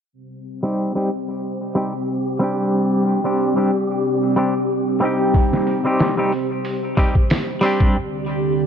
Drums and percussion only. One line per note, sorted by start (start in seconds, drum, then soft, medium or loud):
5.34 kick medium
5.34 open hi-hat medium
5.53 snare soft
5.67 open hi-hat medium
5.99 snare loud
5.99 open hi-hat medium
6.32 open hi-hat medium
6.65 open hi-hat medium
6.97 kick medium
6.97 open hi-hat medium
7.15 kick medium
7.30 snare loud
7.30 open hi-hat medium
7.63 open hi-hat medium
7.80 kick medium